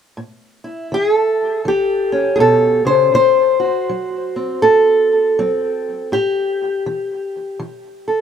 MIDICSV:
0, 0, Header, 1, 2, 480
1, 0, Start_track
1, 0, Tempo, 742115
1, 116, Time_signature, 4, 2, 24, 8
1, 5310, End_track
2, 0, Start_track
2, 0, Title_t, "Steel-string acoustic guitar"
2, 0, Program_c, 0, 25
2, 111, Note_on_c, 0, 45, 59
2, 415, Note_on_c, 0, 64, 43
2, 557, Note_off_c, 0, 45, 0
2, 594, Note_on_c, 0, 52, 56
2, 608, Note_on_c, 0, 68, 89
2, 731, Note_off_c, 0, 68, 0
2, 731, Note_on_c, 0, 69, 89
2, 1039, Note_off_c, 0, 52, 0
2, 1068, Note_on_c, 0, 52, 59
2, 1075, Note_off_c, 0, 64, 0
2, 1087, Note_on_c, 0, 67, 77
2, 1373, Note_on_c, 0, 61, 41
2, 1516, Note_off_c, 0, 52, 0
2, 1522, Note_off_c, 0, 69, 0
2, 1524, Note_on_c, 0, 68, 68
2, 1544, Note_on_c, 0, 47, 62
2, 1551, Note_off_c, 0, 68, 0
2, 1554, Note_on_c, 0, 69, 86
2, 1841, Note_off_c, 0, 47, 0
2, 1843, Note_on_c, 0, 49, 56
2, 1851, Note_off_c, 0, 69, 0
2, 1854, Note_on_c, 0, 72, 96
2, 2007, Note_off_c, 0, 67, 0
2, 2013, Note_off_c, 0, 61, 0
2, 2026, Note_off_c, 0, 72, 0
2, 2028, Note_off_c, 0, 49, 0
2, 2031, Note_on_c, 0, 50, 67
2, 2036, Note_on_c, 0, 72, 117
2, 2326, Note_on_c, 0, 66, 46
2, 2477, Note_off_c, 0, 50, 0
2, 2519, Note_on_c, 0, 54, 57
2, 2821, Note_on_c, 0, 60, 40
2, 2961, Note_off_c, 0, 54, 0
2, 2987, Note_off_c, 0, 72, 0
2, 2990, Note_on_c, 0, 69, 88
2, 2994, Note_on_c, 0, 45, 63
2, 3439, Note_off_c, 0, 45, 0
2, 3478, Note_off_c, 0, 60, 0
2, 3485, Note_on_c, 0, 54, 67
2, 3487, Note_on_c, 0, 60, 50
2, 3925, Note_off_c, 0, 54, 0
2, 3930, Note_off_c, 0, 66, 0
2, 3939, Note_off_c, 0, 60, 0
2, 3953, Note_off_c, 0, 69, 0
2, 3959, Note_on_c, 0, 45, 73
2, 3964, Note_on_c, 0, 67, 81
2, 4401, Note_off_c, 0, 45, 0
2, 4439, Note_on_c, 0, 52, 65
2, 4881, Note_off_c, 0, 52, 0
2, 4913, Note_on_c, 0, 52, 61
2, 4920, Note_off_c, 0, 67, 0
2, 5224, Note_on_c, 0, 69, 45
2, 5310, Note_off_c, 0, 52, 0
2, 5310, Note_off_c, 0, 69, 0
2, 5310, End_track
0, 0, End_of_file